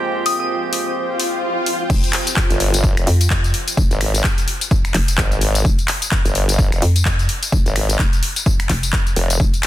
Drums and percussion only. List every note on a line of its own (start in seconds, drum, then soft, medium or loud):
0.26 open hi-hat medium
0.73 open hi-hat medium
1.20 open hi-hat medium
1.66 open hi-hat medium
1.90 kick loud
1.90 crash loud
1.90 tambourine medium
2.04 closed hi-hat soft
2.04 tambourine soft
2.13 finger snap medium
2.13 clap medium
2.13 open hi-hat loud
2.27 closed hi-hat medium
2.27 tambourine medium
2.37 kick loud
2.37 clap loud
2.50 closed hi-hat medium
2.50 tambourine soft
2.60 open hi-hat loud
2.74 closed hi-hat medium
2.74 tambourine medium
2.84 kick loud
2.84 tambourine medium
2.97 finger snap medium
2.97 closed hi-hat medium
2.97 tambourine soft
3.07 open hi-hat loud
3.21 closed hi-hat medium
3.21 tambourine medium
3.30 kick loud
3.30 clap loud
3.30 tambourine medium
3.44 closed hi-hat soft
3.44 tambourine soft
3.54 open hi-hat loud
3.68 closed hi-hat medium
3.68 tambourine medium
3.77 kick loud
3.77 tambourine medium
3.91 closed hi-hat soft
3.91 tambourine soft
4.01 finger snap medium
4.01 open hi-hat loud
4.14 closed hi-hat medium
4.14 tambourine medium
4.24 kick loud
4.24 clap loud
4.24 tambourine medium
4.38 closed hi-hat soft
4.38 tambourine soft
4.48 open hi-hat loud
4.61 closed hi-hat medium
4.61 tambourine medium
4.71 kick loud
4.71 tambourine medium
4.85 finger snap medium
4.85 closed hi-hat medium
4.85 tambourine soft
4.94 clap medium
4.94 open hi-hat loud
5.08 closed hi-hat medium
5.08 tambourine medium
5.18 kick loud
5.18 clap loud
5.18 tambourine medium
5.32 closed hi-hat soft
5.32 tambourine soft
5.41 open hi-hat loud
5.55 closed hi-hat medium
5.55 tambourine medium
5.65 kick loud
5.65 tambourine medium
5.79 closed hi-hat soft
5.79 tambourine soft
5.88 finger snap medium
5.88 clap medium
5.88 open hi-hat loud
6.02 closed hi-hat medium
6.02 tambourine medium
6.12 kick loud
6.12 clap loud
6.12 tambourine medium
6.25 closed hi-hat medium
6.25 tambourine soft
6.35 open hi-hat loud
6.49 closed hi-hat medium
6.49 tambourine medium
6.59 kick loud
6.59 tambourine medium
6.72 finger snap medium
6.72 closed hi-hat medium
6.72 tambourine soft
6.82 open hi-hat loud
6.96 closed hi-hat medium
6.96 tambourine medium
7.05 kick loud
7.05 clap loud
7.19 closed hi-hat soft
7.19 tambourine soft
7.29 open hi-hat loud
7.43 closed hi-hat medium
7.43 tambourine medium
7.52 kick loud
7.52 tambourine medium
7.66 closed hi-hat soft
7.66 tambourine soft
7.76 finger snap medium
7.76 open hi-hat loud
7.89 closed hi-hat medium
7.89 tambourine medium
7.99 kick loud
7.99 clap loud
7.99 tambourine medium
8.13 closed hi-hat soft
8.13 tambourine soft
8.23 open hi-hat loud
8.36 closed hi-hat medium
8.36 tambourine medium
8.46 kick loud
8.46 tambourine medium
8.60 finger snap medium
8.60 closed hi-hat medium
8.60 tambourine soft
8.69 kick medium
8.69 clap medium
8.69 open hi-hat loud
8.83 closed hi-hat medium
8.83 tambourine medium
8.93 kick loud
8.93 clap loud
8.93 tambourine medium
9.07 closed hi-hat soft
9.07 tambourine soft
9.16 open hi-hat loud
9.30 closed hi-hat medium
9.30 tambourine medium
9.40 kick loud
9.40 tambourine medium
9.54 closed hi-hat soft
9.54 tambourine soft
9.63 finger snap medium
9.63 clap medium
9.63 open hi-hat loud